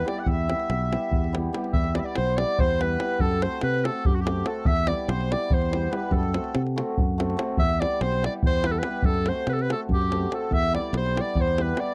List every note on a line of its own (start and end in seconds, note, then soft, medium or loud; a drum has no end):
0.05 0.32 G3 medium
0.05 0.18 B3 medium
0.05 0.18 E4 medium
0.05 0.19 G4 medium
0.05 0.21 D5 medium
0.05 davul high medium
0.12 0.23 D5 medium
0.19 0.29 F#5 medium
0.19 0.28 F#5 medium
0.26 0.52 E2 loud
0.26 1.34 E5 loud
0.26 davul low medium
0.30 1.36 E5 medium
0.48 0.91 G3 medium
0.48 0.61 B3 medium
0.48 0.61 E4 medium
0.48 0.62 G4 medium
0.48 davul high medium
0.60 davul high soft
0.69 0.95 B1 loud
0.69 davul high medium
0.92 1.31 G3 medium
0.92 1.05 B3 medium
0.92 1.05 E4 medium
0.92 1.05 G4 medium
0.92 davul high medium
1.11 1.48 E2 medium
1.11 davul low medium
1.24 davul high soft
1.32 1.51 G3 medium
1.32 1.45 B3 medium
1.32 1.45 E4 medium
1.32 1.46 G4 medium
1.32 davul high medium
1.53 1.78 G3 medium
1.53 1.65 B3 medium
1.53 1.66 E4 medium
1.53 1.66 G4 medium
1.53 davul high medium
1.64 davul high soft
1.73 1.99 E2 medium
1.73 1.97 E5 loud
1.73 1.95 E5 medium
1.73 davul low medium
1.84 davul high soft
1.94 2.37 G3 medium
1.94 2.08 B3 medium
1.94 2.08 E4 medium
1.94 2.09 G4 medium
1.94 2.00 D5 medium
1.94 2.01 D5 loud
1.94 davul high medium
1.99 2.06 E5 medium
2.05 2.16 D5 medium
2.16 2.43 B1 loud
2.16 2.39 C5 loud
2.16 2.38 C5 medium
2.16 davul high medium
2.27 davul high soft
2.37 2.78 G3 medium
2.37 2.51 B3 medium
2.37 2.51 E4 medium
2.37 2.51 G4 medium
2.37 2.62 D5 loud
2.37 2.58 D5 medium
2.37 davul high medium
2.58 2.96 E2 medium
2.58 2.80 C5 medium
2.58 2.84 C5 loud
2.58 davul low medium
2.70 davul high soft
2.79 2.98 G3 medium
2.79 2.92 B3 medium
2.79 2.92 E4 medium
2.79 2.92 G4 medium
2.79 3.19 B4 medium
2.79 3.22 B4 loud
2.79 davul high medium
2.99 3.24 G3 medium
2.99 3.11 B3 medium
2.99 3.11 E4 medium
2.99 3.12 G4 medium
2.99 davul high medium
3.19 3.46 F#2 loud
3.19 3.44 A4 loud
3.19 3.43 A4 medium
3.19 davul low medium
3.31 davul high soft
3.41 3.53 A3 medium
3.41 3.54 C4 medium
3.41 3.54 F#4 medium
3.41 3.54 A4 medium
3.41 3.62 C5 loud
3.41 davul high medium
3.46 3.64 C5 medium
3.61 3.88 C3 loud
3.61 3.86 B4 loud
3.61 3.85 B4 medium
3.61 davul high medium
3.74 davul high soft
3.84 3.96 A3 medium
3.84 3.97 C4 medium
3.84 3.97 F#4 medium
3.84 4.07 A4 medium
3.84 3.97 A4 medium
3.84 4.06 A4 medium
3.84 davul high medium
4.05 4.42 F#2 medium
4.05 4.17 G4 loud
4.05 4.13 G4 medium
4.05 davul low loud
4.13 4.20 F#4 medium
4.13 4.23 F#4 medium
4.20 4.46 G4 medium
4.20 4.48 G4 medium
4.25 4.37 A3 medium
4.25 4.38 C4 medium
4.25 4.38 F#4 medium
4.25 4.38 A4 medium
4.25 davul high medium
4.44 4.57 A3 medium
4.44 4.57 C4 medium
4.44 4.58 F#4 medium
4.44 4.68 A4 medium
4.44 4.58 A4 medium
4.44 4.66 A4 medium
4.44 davul high medium
4.65 4.92 E2 loud
4.65 4.88 E5 medium
4.65 4.90 E5 loud
4.65 davul low loud
4.76 davul high soft
4.87 5.28 G3 medium
4.87 5.00 B3 medium
4.87 5.00 E4 medium
4.87 5.01 G4 medium
4.87 5.10 D5 loud
4.87 5.09 D5 medium
4.87 davul high medium
5.08 5.34 B1 loud
5.08 5.31 C5 medium
5.08 5.34 C5 loud
5.08 davul high medium
5.21 davul high soft
5.30 5.70 G3 medium
5.30 5.43 B3 medium
5.30 5.43 E4 medium
5.30 5.43 G4 medium
5.30 5.55 D5 loud
5.30 5.51 D5 medium
5.30 davul high medium
5.50 5.87 E2 medium
5.50 5.93 C5 loud
5.50 davul low loud
5.55 5.94 C5 medium
5.62 davul high soft
5.71 5.90 G3 medium
5.71 5.84 B3 medium
5.71 5.84 E4 medium
5.71 5.85 G4 medium
5.71 davul high medium
5.92 6.17 G3 medium
5.92 6.03 B3 medium
5.92 6.04 E4 medium
5.92 6.04 G4 medium
5.92 6.14 B4 medium
5.92 davul high medium
5.96 6.14 B4 medium
6.11 6.37 F#2 medium
6.11 6.60 A4 medium
6.11 davul low medium
6.17 6.63 A4 medium
6.23 davul high soft
6.33 6.45 A3 medium
6.33 6.46 C4 medium
6.33 6.46 F#4 medium
6.33 6.46 A4 medium
6.33 davul high medium
6.44 davul high soft
6.55 6.81 C3 loud
6.55 davul high medium
6.67 davul high soft
6.76 6.88 A3 medium
6.76 6.89 C4 medium
6.76 6.89 F#4 medium
6.76 6.90 A4 medium
6.76 davul high medium
6.98 7.34 F#2 medium
6.98 davul low loud
7.18 7.30 A3 medium
7.18 7.30 C4 medium
7.18 7.30 F#4 medium
7.18 7.31 A4 medium
7.18 davul high medium
7.30 davul high soft
7.37 7.49 A3 medium
7.37 7.50 C4 medium
7.37 7.50 F#4 medium
7.37 7.50 A4 medium
7.37 davul high medium
7.57 7.84 E2 medium
7.57 7.82 E5 loud
7.57 7.80 E5 medium
7.57 davul low loud
7.69 davul high soft
7.80 8.21 G3 medium
7.80 7.92 B3 medium
7.80 7.93 E4 soft
7.80 7.93 G4 medium
7.80 8.03 D5 loud
7.80 8.02 D5 loud
7.80 davul high medium
8.01 8.26 B1 loud
8.01 8.24 C5 medium
8.01 8.24 C5 loud
8.01 davul high medium
8.12 davul high soft
8.22 8.61 G3 medium
8.22 8.35 B3 medium
8.22 8.35 E4 medium
8.22 8.35 G4 medium
8.22 8.34 D5 medium
8.22 davul high medium
8.26 8.34 D5 medium
8.43 8.80 E2 medium
8.43 8.65 C5 medium
8.43 8.68 C5 loud
8.43 davul low loud
8.53 davul high soft
8.62 8.83 G3 medium
8.62 8.76 B3 medium
8.62 8.76 E4 medium
8.62 8.76 G4 medium
8.62 8.71 B4 medium
8.62 davul high medium
8.67 8.73 B4 loud
8.72 8.80 A4 medium
8.72 8.79 A4 medium
8.79 9.07 B4 loud
8.79 9.05 B4 medium
8.83 9.09 G3 medium
8.83 8.96 B3 medium
8.83 8.97 E4 medium
8.83 8.97 G4 medium
8.83 davul high medium
9.02 9.30 F#2 loud
9.02 9.30 A4 loud
9.02 davul low medium
9.08 9.29 A4 medium
9.14 davul high soft
9.26 9.39 A3 medium
9.26 9.39 C4 medium
9.26 9.39 F#4 medium
9.26 9.40 A4 medium
9.26 9.48 C5 loud
9.26 davul high medium
9.32 9.50 C5 medium
9.47 9.73 C3 medium
9.47 9.55 B4 loud
9.47 davul high medium
9.51 9.63 A4 medium
9.51 9.54 B4 medium
9.55 9.60 A4 medium
9.59 9.71 B4 loud
9.59 davul high soft
9.63 9.72 B4 medium
9.70 9.82 A3 medium
9.70 9.82 C4 medium
9.70 9.82 F#4 medium
9.70 9.82 A4 medium
9.70 9.81 A4 loud
9.70 davul high medium
9.76 9.84 A4 medium
9.89 10.26 F#2 medium
9.89 davul low medium
9.93 10.30 G4 loud
9.93 10.32 G4 medium
10.01 davul high soft
10.10 10.22 A3 medium
10.10 10.22 C4 medium
10.10 10.23 F#4 medium
10.10 10.23 A4 medium
10.10 davul high medium
10.31 10.42 A3 medium
10.31 10.43 C4 medium
10.31 10.43 F#4 medium
10.31 10.43 A4 medium
10.31 10.55 A4 medium
10.31 davul high medium
10.38 10.53 A4 medium
10.51 10.76 E2 medium
10.51 10.75 E5 loud
10.51 davul low medium
10.56 10.76 E5 medium
10.63 davul high soft
10.73 11.14 G3 medium
10.73 10.85 B3 medium
10.73 10.86 E4 medium
10.73 10.86 G4 medium
10.73 10.93 D5 medium
10.73 davul high medium
10.79 10.95 D5 medium
10.93 11.19 B1 loud
10.93 davul high medium
10.97 11.23 C5 loud
10.97 11.17 C5 medium
11.06 davul high soft
11.15 11.56 G3 medium
11.15 11.28 B3 medium
11.15 11.28 E4 medium
11.15 11.28 G4 medium
11.15 11.38 D5 medium
11.15 davul high medium
11.21 11.43 D5 loud
11.35 11.72 E2 medium
11.35 davul low medium
11.40 11.60 C5 medium
11.40 11.63 C5 loud
11.48 davul high soft
11.58 11.75 G3 medium
11.58 11.69 B3 medium
11.58 11.70 E4 medium
11.58 11.70 G4 medium
11.58 davul high medium
11.62 11.82 B4 medium
11.62 11.80 B4 medium
11.76 11.94 G3 medium
11.76 11.88 B3 medium
11.76 11.89 E4 medium
11.76 11.89 G4 medium
11.76 11.94 D5 medium
11.76 davul high medium
11.80 11.94 D5 medium